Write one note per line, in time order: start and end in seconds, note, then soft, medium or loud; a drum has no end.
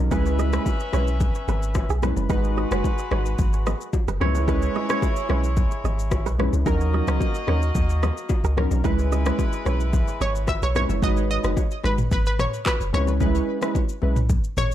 0.11 0.59 C#2 loud
0.11 0.49 G#3 medium
0.11 0.49 C#4 medium
0.11 1.99 C#4 medium
0.11 0.49 E4 medium
0.11 1.99 B4 medium
0.11 0.50 B4 loud
0.11 0.19 B4 medium
0.11 1.99 E5 medium
0.11 kick loud
0.11 low conga medium
0.11 shaker medium
0.26 shaker soft
0.39 0.47 D#5 medium
0.39 high bongo medium
0.39 shaker medium
0.53 0.68 G#3 medium
0.53 0.68 C#4 medium
0.53 0.68 E4 medium
0.53 0.68 B4 medium
0.53 0.60 C#5 medium
0.53 cross-stick loud
0.53 shaker medium
0.66 kick medium
0.66 high bongo medium
0.66 shaker medium
0.80 shaker medium
0.93 1.29 B1 medium
0.93 1.09 G#3 medium
0.93 1.09 C#4 medium
0.93 1.09 E4 medium
0.93 1.09 B4 medium
0.93 1.01 C#5 medium
0.93 cross-stick medium
0.93 high bongo medium
0.93 low bongo medium
0.93 shaker medium
1.07 shaker soft
1.20 kick loud
1.20 low conga medium
1.20 shaker medium
1.35 shaker medium
1.48 1.84 G#1 medium
1.48 1.56 B4 medium
1.48 low bongo medium
1.48 shaker soft
1.63 shaker medium
1.75 kick medium
1.75 cross-stick medium
1.75 high bongo medium
1.75 shaker medium
1.89 2.13 B1 medium
1.89 1.97 G#4 medium
1.89 shaker soft
2.02 2.27 G#3 medium
2.02 2.28 C#4 medium
2.02 2.28 E4 medium
2.02 2.28 B4 medium
2.02 2.10 B4 medium
2.02 cross-stick medium
2.02 low conga medium
2.02 shaker soft
2.16 2.28 F#1 medium
2.16 low bongo medium
2.16 shaker medium
2.29 2.66 G#1 loud
2.29 2.68 G#3 medium
2.29 3.90 G#3 medium
2.29 2.68 D#4 medium
2.29 2.68 F#4 medium
2.29 3.90 F#4 medium
2.29 3.90 B4 medium
2.29 2.68 B4 loud
2.29 2.38 B4 medium
2.29 kick loud
2.29 low conga medium
2.29 shaker medium
2.44 shaker soft
2.57 2.65 D#5 medium
2.57 high bongo medium
2.71 2.82 F#1 medium
2.71 2.86 G#3 medium
2.71 2.86 D#4 medium
2.71 2.86 F#4 medium
2.71 2.86 B4 medium
2.71 2.79 C#5 medium
2.71 cross-stick loud
2.71 shaker medium
2.84 kick medium
2.84 high bongo medium
2.84 shaker medium
2.98 shaker medium
3.11 3.35 G#1 medium
3.11 3.27 G#3 medium
3.11 3.27 D#4 medium
3.11 3.28 F#4 medium
3.11 3.28 B4 medium
3.11 3.19 C#5 medium
3.11 cross-stick medium
3.11 high bongo medium
3.11 low bongo medium
3.26 shaker medium
3.39 3.75 G#1 loud
3.39 kick loud
3.39 low conga medium
3.39 shaker medium
3.53 shaker medium
3.67 3.74 D#5 medium
3.67 cross-stick medium
3.67 low bongo medium
3.67 shaker soft
3.81 shaker medium
3.93 kick medium
3.93 high bongo medium
3.93 shaker medium
4.07 4.19 F#1 medium
4.07 4.21 B4 medium
4.07 shaker soft
4.20 4.68 C#2 medium
4.20 4.46 G#3 medium
4.20 6.35 G#3 medium
4.20 4.46 C#4 medium
4.20 6.35 E4 medium
4.20 4.46 E4 medium
4.20 4.46 B4 medium
4.20 6.35 C#5 medium
4.20 4.90 C#5 medium
4.20 cross-stick medium
4.20 low conga medium
4.35 low bongo medium
4.35 shaker medium
4.47 4.86 G#3 medium
4.47 4.86 C#4 medium
4.47 4.86 E4 medium
4.47 4.86 B4 loud
4.47 4.56 B4 medium
4.47 kick loud
4.47 low conga medium
4.47 shaker medium
4.62 shaker soft
4.75 4.90 D#5 medium
4.75 high bongo medium
4.89 5.04 G#3 medium
4.89 5.04 C#4 medium
4.89 5.04 E4 medium
4.89 5.04 B4 medium
4.89 5.30 C#5 medium
4.89 cross-stick loud
4.89 shaker medium
5.02 kick medium
5.02 high bongo medium
5.02 shaker medium
5.16 shaker medium
5.29 5.66 B1 medium
5.29 5.45 G#3 medium
5.29 5.46 C#4 medium
5.29 5.46 E4 medium
5.29 5.46 B4 medium
5.29 5.37 C#5 medium
5.29 cross-stick medium
5.29 high bongo medium
5.29 low bongo medium
5.44 shaker soft
5.57 kick loud
5.57 low conga medium
5.57 shaker medium
5.71 shaker medium
5.84 6.27 G#1 loud
5.84 5.92 D#5 medium
5.84 low bongo medium
5.84 shaker soft
5.99 shaker medium
6.11 kick medium
6.11 cross-stick medium
6.11 high bongo medium
6.11 shaker medium
6.26 6.49 B1 medium
6.26 6.33 B4 medium
6.26 shaker soft
6.38 6.64 G#3 medium
6.38 6.64 C#4 medium
6.38 6.64 E4 medium
6.38 6.64 B4 medium
6.38 6.47 C#5 medium
6.38 cross-stick medium
6.38 low conga medium
6.53 6.64 C#2 medium
6.53 low bongo medium
6.53 shaker medium
6.66 7.02 D#2 loud
6.66 7.04 F#3 medium
6.66 8.53 A#3 medium
6.66 7.04 C#4 medium
6.66 7.04 D#4 medium
6.66 8.53 F#4 medium
6.66 7.04 A#4 loud
6.66 6.74 A#4 medium
6.66 8.53 D#5 medium
6.66 kick loud
6.66 low conga medium
6.66 shaker medium
6.81 shaker soft
6.93 7.01 D#5 medium
6.93 high bongo medium
7.07 7.19 C#2 loud
7.07 7.22 F#3 medium
7.07 7.22 C#4 medium
7.07 7.22 D#4 medium
7.07 7.23 A#4 medium
7.07 7.15 C#5 medium
7.07 cross-stick loud
7.07 shaker medium
7.20 kick medium
7.20 high bongo medium
7.20 shaker medium
7.35 shaker medium
7.47 7.71 D#2 medium
7.47 7.64 F#3 medium
7.47 7.64 C#4 medium
7.47 7.64 D#4 medium
7.47 7.64 A#4 medium
7.47 7.56 C#5 medium
7.47 cross-stick medium
7.47 high bongo medium
7.47 low bongo medium
7.62 shaker soft
7.75 8.11 D#2 medium
7.75 kick loud
7.75 low conga medium
7.75 shaker medium
7.89 shaker medium
8.03 8.10 D#5 medium
8.03 cross-stick medium
8.03 low bongo medium
8.03 shaker soft
8.17 shaker medium
8.29 kick medium
8.29 high bongo medium
8.29 shaker medium
8.44 8.67 C#2 medium
8.44 8.51 A#4 medium
8.44 shaker soft
8.57 8.82 F#3 medium
8.57 8.82 C#4 medium
8.57 8.82 D#4 medium
8.57 8.82 A#4 medium
8.57 8.65 C#5 medium
8.57 cross-stick medium
8.57 low conga medium
8.71 8.83 B1 medium
8.71 low bongo medium
8.71 shaker medium
8.84 9.31 C#2 loud
8.84 9.22 G#3 medium
8.84 10.71 G#3 medium
8.84 9.22 C#4 medium
8.84 9.22 E4 medium
8.84 10.71 E4 medium
8.84 9.22 B4 loud
8.84 10.71 B4 medium
8.84 8.92 B4 medium
8.84 kick loud
8.84 low conga medium
8.84 shaker medium
8.99 shaker soft
9.12 9.19 D#5 medium
9.12 high bongo medium
9.12 shaker medium
9.25 9.41 G#3 medium
9.25 9.41 C#4 medium
9.25 9.41 E4 medium
9.25 9.41 B4 medium
9.25 9.33 C#5 medium
9.25 cross-stick loud
9.25 shaker medium
9.39 kick medium
9.39 high bongo medium
9.39 shaker medium
9.53 shaker medium
9.65 10.02 B1 medium
9.65 9.82 G#3 medium
9.65 9.82 C#4 medium
9.65 9.82 E4 medium
9.65 9.82 B4 medium
9.65 9.74 C#5 medium
9.65 cross-stick medium
9.65 high bongo medium
9.65 low bongo medium
9.65 shaker medium
9.80 shaker soft
9.93 kick loud
9.93 low conga medium
9.93 shaker medium
10.08 shaker medium
10.21 10.56 G#1 medium
10.21 10.49 C#5 loud
10.21 10.28 D#5 medium
10.21 low bongo medium
10.21 shaker soft
10.35 shaker medium
10.47 10.63 E5 loud
10.47 kick medium
10.47 cross-stick medium
10.47 high bongo medium
10.47 shaker medium
10.62 10.86 B1 medium
10.62 10.76 B4 medium
10.62 10.75 C#5 loud
10.62 shaker soft
10.75 11.00 G#3 medium
10.75 11.00 C#4 medium
10.75 11.00 E4 medium
10.75 11.00 B4 medium
10.75 11.91 C#5 medium
10.75 11.04 C#5 medium
10.75 cross-stick medium
10.75 low conga medium
10.75 shaker medium
10.89 11.01 F#1 medium
10.89 low bongo medium
10.89 shaker medium
11.02 11.38 G#1 loud
11.02 11.40 G#3 medium
11.02 11.40 D#4 medium
11.02 11.40 F#4 medium
11.02 11.41 B4 loud
11.02 11.29 D#5 loud
11.02 kick loud
11.02 low conga medium
11.02 shaker medium
11.17 shaker soft
11.31 11.86 D#5 loud
11.43 11.55 F#1 medium
11.43 11.59 G#3 medium
11.43 11.59 D#4 medium
11.43 11.59 F#4 medium
11.43 11.59 B4 medium
11.43 cross-stick loud
11.43 low bongo medium
11.43 shaker medium
11.57 kick medium
11.57 high bongo medium
11.57 shaker medium
11.71 shaker medium
11.84 12.08 G#1 medium
11.84 12.00 G#3 medium
11.84 12.00 D#4 medium
11.84 12.00 F#4 medium
11.84 12.00 B4 medium
11.84 12.11 B4 medium
11.84 cross-stick medium
11.84 low bongo medium
11.98 mid tom medium
11.98 shaker soft
12.11 12.47 G#1 loud
12.11 12.26 B4 loud
12.11 kick loud
12.11 low conga medium
12.11 shaker medium
12.26 12.40 B4 medium
12.26 shaker medium
12.39 12.67 C#5 loud
12.39 cross-stick loud
12.39 mid tom medium
12.39 low bongo medium
12.39 shaker soft
12.54 shaker medium
12.66 12.95 B4 loud
12.66 kick medium
12.66 clap medium
12.66 high bongo medium
12.66 shaker medium
12.80 12.92 F#1 medium
12.80 shaker soft
12.93 13.41 C#2 medium
12.93 13.18 G#3 medium
12.93 13.18 C#4 medium
12.93 13.18 E4 medium
12.93 13.19 B4 medium
12.93 14.57 C#5 loud
12.93 cross-stick medium
12.93 low conga medium
13.07 low bongo medium
13.07 shaker medium
13.20 13.59 G#3 medium
13.20 13.59 C#4 medium
13.20 13.59 E4 medium
13.20 13.59 B4 loud
13.20 kick loud
13.20 low conga medium
13.20 shaker medium
13.35 shaker soft
13.61 13.77 G#3 medium
13.61 13.77 C#4 medium
13.61 13.77 E4 medium
13.61 13.77 B4 medium
13.61 cross-stick loud
13.61 low bongo medium
13.61 shaker medium
13.75 kick medium
13.75 high bongo medium
13.75 shaker medium
13.89 shaker medium
14.02 14.38 B1 medium
14.02 14.18 G#3 medium
14.02 14.18 C#4 medium
14.02 14.18 E4 medium
14.02 14.19 B4 medium
14.02 low bongo medium
14.16 mid tom medium
14.16 shaker soft
14.29 kick loud
14.29 low conga medium
14.29 shaker medium
14.44 shaker medium
14.57 14.75 G#1 loud
14.57 14.75 C#5 loud
14.57 mid tom medium
14.57 low bongo medium
14.57 shaker medium